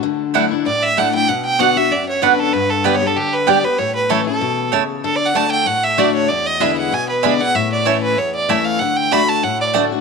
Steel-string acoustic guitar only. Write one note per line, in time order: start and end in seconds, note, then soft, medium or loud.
0.03 0.63 D3 medium
0.35 0.51 F#3 medium
0.35 0.51 A3 medium
0.35 0.51 D4 medium
0.35 0.50 E4 medium
0.51 0.66 D4 medium
0.51 0.65 E4 medium
0.66 1.26 A2 medium
0.97 1.13 F#3 medium
0.97 1.13 A3 medium
0.97 1.14 D4 medium
0.97 1.13 E4 loud
1.14 1.29 D4 soft
1.14 1.28 E4 medium
1.29 1.88 B2 loud
1.60 1.76 D3 medium
1.60 1.76 B3 medium
1.60 1.76 D4 medium
1.60 1.75 F#4 medium
1.76 1.92 D4 soft
1.76 1.90 F#4 medium
1.91 2.51 F#2 medium
2.22 2.52 D3 medium
2.22 2.52 B3 medium
2.22 2.53 D4 loud
2.22 2.53 F#4 loud
2.54 3.14 G2 medium
2.85 3.01 D3 medium
2.85 3.02 G3 medium
2.85 3.02 B3 medium
2.85 3.01 G4 medium
3.02 3.17 B3 medium
3.02 3.16 G4 medium
3.16 3.46 D3 medium
3.47 3.64 D3 medium
3.47 3.64 G3 loud
3.47 3.64 B3 medium
3.47 3.62 G4 loud
3.64 3.79 B3 soft
3.64 3.78 G4 medium
3.79 4.39 A2 medium
4.10 4.26 E3 medium
4.10 4.27 A3 medium
4.10 4.27 C#4 medium
4.10 4.26 E4 medium
4.27 4.42 C#4 medium
4.27 4.41 E4 medium
4.41 4.71 B2 medium
4.73 5.03 C#3 medium
5.04 5.33 D3 medium
5.34 5.65 D3 medium
5.34 5.65 A3 medium
5.34 5.65 D4 medium
5.34 5.66 F#4 medium
5.66 6.26 A2 medium
5.97 6.28 D3 medium
5.97 6.28 A3 medium
5.97 6.28 D4 loud
5.97 6.28 F#4 loud
6.30 6.89 E2 medium
6.60 6.90 D3 medium
6.60 6.91 G#3 medium
6.60 6.91 B3 medium
6.60 6.91 E4 loud
6.92 7.52 B2 medium
7.24 7.40 D3 medium
7.24 7.40 G#3 loud
7.24 7.40 B3 loud
7.24 7.39 E4 medium
7.40 7.55 B3 soft
7.40 7.54 E4 medium
7.55 8.14 A2 loud
7.85 8.15 E3 loud
7.85 8.16 A3 medium
7.85 8.16 C#4 medium
7.85 8.16 E4 loud
8.17 8.77 E2 medium
8.49 8.79 E3 medium
8.49 8.79 A3 loud
8.49 8.79 C#4 loud
8.49 8.79 E4 loud
8.81 9.11 D3 medium
9.12 9.42 D3 medium
9.12 9.42 A3 medium
9.12 9.42 D4 medium
9.12 9.42 F#4 medium
9.44 10.01 A2 medium
9.75 9.90 D3 loud
9.75 9.91 A3 medium
9.75 9.91 D4 medium
9.75 9.91 F#4 loud
9.92 10.01 D4 soft
9.92 10.01 F#4 medium